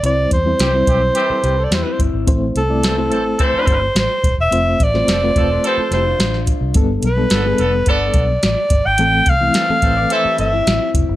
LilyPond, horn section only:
\new Staff \with { instrumentName = "Horn section" } { \time 4/4 \key a \minor \tempo 4 = 107 r4 <e c' g'>16 r16 <e c' g'>16 r16 <e c' g'>8. r4 r16 | r4 <e c' a'>16 r16 <e c' a'>16 r16 <e c' a'>8. r4 r16 | r4 <f c' a'>16 r16 <f c' a'>16 r16 <f c' a'>8. r4 r16 | r4 <d b a'>16 r16 <d b a'>16 r16 <d b a'>8. r4 r16 |
r4 <e c' a'>16 r16 <e c' a'>16 r16 <e c' a'>8. r4 r16 | }